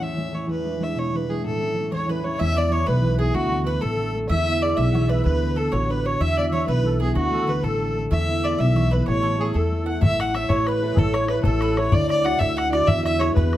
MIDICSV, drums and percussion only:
0, 0, Header, 1, 2, 480
1, 0, Start_track
1, 0, Key_signature, 3, "major"
1, 0, Tempo, 317628
1, 745, Time_signature, 6, 3, 24, 8
1, 20507, End_track
2, 0, Start_track
2, 0, Title_t, "Bodhran"
2, 15150, Note_on_c, 9, 64, 95
2, 15301, Note_off_c, 9, 64, 0
2, 15412, Note_on_c, 9, 64, 71
2, 15563, Note_off_c, 9, 64, 0
2, 15635, Note_on_c, 9, 64, 75
2, 15786, Note_off_c, 9, 64, 0
2, 15865, Note_on_c, 9, 64, 85
2, 16016, Note_off_c, 9, 64, 0
2, 16119, Note_on_c, 9, 64, 67
2, 16270, Note_off_c, 9, 64, 0
2, 16578, Note_on_c, 9, 64, 88
2, 16730, Note_off_c, 9, 64, 0
2, 16835, Note_on_c, 9, 64, 61
2, 16986, Note_off_c, 9, 64, 0
2, 17053, Note_on_c, 9, 64, 75
2, 17204, Note_off_c, 9, 64, 0
2, 17282, Note_on_c, 9, 64, 80
2, 17433, Note_off_c, 9, 64, 0
2, 17541, Note_on_c, 9, 64, 72
2, 17692, Note_off_c, 9, 64, 0
2, 17790, Note_on_c, 9, 64, 73
2, 17941, Note_off_c, 9, 64, 0
2, 18016, Note_on_c, 9, 64, 96
2, 18167, Note_off_c, 9, 64, 0
2, 18288, Note_on_c, 9, 64, 66
2, 18439, Note_off_c, 9, 64, 0
2, 18523, Note_on_c, 9, 64, 72
2, 18674, Note_off_c, 9, 64, 0
2, 18749, Note_on_c, 9, 64, 88
2, 18901, Note_off_c, 9, 64, 0
2, 19014, Note_on_c, 9, 64, 81
2, 19165, Note_off_c, 9, 64, 0
2, 19239, Note_on_c, 9, 64, 73
2, 19391, Note_off_c, 9, 64, 0
2, 19468, Note_on_c, 9, 64, 99
2, 19619, Note_off_c, 9, 64, 0
2, 19730, Note_on_c, 9, 64, 73
2, 19881, Note_off_c, 9, 64, 0
2, 19964, Note_on_c, 9, 64, 75
2, 20115, Note_off_c, 9, 64, 0
2, 20196, Note_on_c, 9, 64, 85
2, 20347, Note_off_c, 9, 64, 0
2, 20446, Note_on_c, 9, 64, 67
2, 20507, Note_off_c, 9, 64, 0
2, 20507, End_track
0, 0, End_of_file